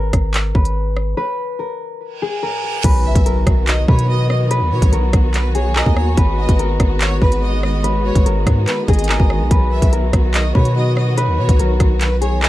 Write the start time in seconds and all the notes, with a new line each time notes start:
Already playing: G#1 G#4 A#4
0.13 G#1, kick, cross-stick, closed hi-hat
0.34 clap, closed hi-hat
0.55 G#1 B4, kick
0.65 closed hi-hat
0.97 cross-stick
1.17 B4
1.59 A#4
2.01 reverse cymbal
2.22 G#4
2.43 A#4
2.84 B1 D#3 F#3 B3 F#4 B4, kick, closed hi-hat, crash, impact
3.05 E5
3.15 B1, kick, closed hi-hat
3.26 A#4, closed hi-hat
3.47 B1, kick, cross-stick, closed hi-hat
3.67 D#5, clap, closed hi-hat
3.88 B2 B4 C#5, kick
3.99 closed hi-hat
4.09 D#5
4.30 D#5, cross-stick
4.51 B4, closed hi-hat
4.61 D#2
4.72 B2 C#5
4.82 B1, kick, closed hi-hat
4.92 B1 A#4, closed hi-hat
5.13 B1, kick, cross-stick, closed hi-hat
5.34 B4, clap, closed hi-hat
5.55 G#4 C#5, closed hi-hat
5.76 A#4 D#5, clap
5.86 D#2, kick
5.97 C#5, cross-stick
6.17 G#1 D#3 G#3 B4, kick, closed hi-hat
6.38 D#5
6.49 G#1, kick, closed hi-hat
6.59 A#4, closed hi-hat
6.80 G#1, kick, cross-stick, closed hi-hat
7.01 C#5, clap, closed hi-hat
7.22 G#1 B4, kick
7.32 closed hi-hat
7.42 D#5
7.63 D#5, cross-stick
7.84 B4, closed hi-hat
8.05 C#5
8.15 G#1, kick, closed hi-hat
8.26 G#1 A#4, closed hi-hat
8.47 G#2, kick, cross-stick, closed hi-hat
8.67 B4, clap, closed hi-hat
8.88 G#1 G#4 D#5, kick, closed hi-hat
8.93 closed hi-hat
8.99 closed hi-hat
9.04 closed hi-hat
9.09 A#4, clap
9.20 G#1, kick
9.30 cross-stick
9.40 B1
9.51 B1 F#3 F#4 B4, kick, closed hi-hat
9.72 E5
9.82 B1, kick, closed hi-hat
9.92 A#4, closed hi-hat
10.13 B1, kick, cross-stick, closed hi-hat
10.34 D#5, clap, closed hi-hat
10.55 B2 B4 C#5, kick
10.65 closed hi-hat
10.76 D#5
10.97 D#5, cross-stick
11.18 B4, closed hi-hat
11.28 D#2
11.38 B2 C#5
11.49 B1, kick, closed hi-hat
11.59 B1 A#4, closed hi-hat
11.80 B1, kick, cross-stick, closed hi-hat
12.01 B4, clap, closed hi-hat
12.21 G#4 C#5, closed hi-hat
12.42 A#4 D#5, clap